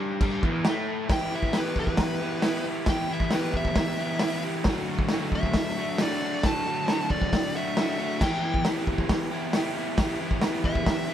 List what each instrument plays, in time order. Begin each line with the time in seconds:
Already playing: overdriven electric guitar G2 G3
0.21 overdriven electric guitar G2 G3, kick, crash
0.43 overdriven electric guitar E2 E3, kick
0.65 overdriven electric guitar A2 A3, snare, crash
1.08 overdriven electric guitar E3 B3 E4 G4, kick, snare, open hi-hat
1.12 lead electric guitar G5
1.30 overdriven electric guitar B3 E4 G4
1.35 lead electric guitar E5
1.43 kick
1.53 overdriven electric guitar E3 B3 E4 G4, snare, open hi-hat
1.57 lead electric guitar B4
1.76 kick
1.80 lead electric guitar B4
1.87 kick
1.97 kick, snare, open hi-hat
2.19 overdriven electric guitar B3 E4 G4
2.42 overdriven electric guitar E3 B3 E4 G4, snare, open hi-hat
2.64 overdriven electric guitar B3 E4 G4
2.86 overdriven electric guitar E3 B3 E4 G4, lead electric guitar G5, kick, snare, open hi-hat
3.08 overdriven electric guitar B3 E4 G4
3.13 lead electric guitar E5
3.20 kick
3.31 overdriven electric guitar E3 B3 E4 G4, lead electric guitar B4, snare, open hi-hat
3.54 lead electric guitar E5, kick
3.65 kick
3.76 kick, snare, open hi-hat
3.98 overdriven electric guitar B3 E4 G4
4.19 overdriven electric guitar E3 B3 E4, snare, open hi-hat
4.24 overdriven electric guitar G4
4.43 overdriven electric guitar B3 E4 G4
4.64 overdriven electric guitar D3 F#3 A3 D4, kick, snare, open hi-hat
4.69 overdriven electric guitar F#4
4.88 overdriven electric guitar A3 D4 F#4
4.99 kick
5.09 overdriven electric guitar D3 F#3 A3, snare, open hi-hat
5.13 overdriven electric guitar D4 F#4
5.32 lead electric guitar E5, kick
5.43 kick
5.54 kick, snare, open hi-hat
5.77 overdriven electric guitar A3 D4 F#4
5.98 overdriven electric guitar F#3 A3 D4 F#4, lead electric guitar D5, snare, open hi-hat
6.21 overdriven electric guitar A3 D4 F#4
6.43 overdriven electric guitar D3 F#3 A3 D4 F#4, lead electric guitar A5, kick, snare, open hi-hat
6.66 overdriven electric guitar A3 D4 F#4
6.87 overdriven electric guitar D3 F#3 A3 D4, snare, open hi-hat
6.91 overdriven electric guitar F#4
7.10 lead electric guitar D5, kick
7.22 kick
7.33 kick, snare, open hi-hat
7.54 overdriven electric guitar A3 D4 F#4, lead electric guitar E5
7.76 overdriven electric guitar F#3 A3 D4 F#4, snare, open hi-hat
7.98 overdriven electric guitar A3 D4 F#4
8.20 overdriven electric guitar E3 B3 E4 G4, lead electric guitar G5, kick, snare, crash
8.41 overdriven electric guitar B3 E4 G4
8.54 kick
8.64 overdriven electric guitar E3 B3 E4 G4, snare, open hi-hat
8.87 kick
8.98 kick
9.09 kick, snare, open hi-hat
9.31 overdriven electric guitar B3 E4 G4
9.53 overdriven electric guitar E3 B3 E4 G4, snare, open hi-hat
9.75 overdriven electric guitar B3 E4 G4
9.97 overdriven electric guitar E3 B3 E4 G4, kick, snare, open hi-hat
10.20 overdriven electric guitar B3 E4 G4
10.31 kick
10.41 overdriven electric guitar E3 B3 E4, snare, open hi-hat
10.46 overdriven electric guitar G4
10.64 lead electric guitar E5, kick
10.75 kick
10.86 kick, snare, open hi-hat
11.08 overdriven electric guitar E4 G4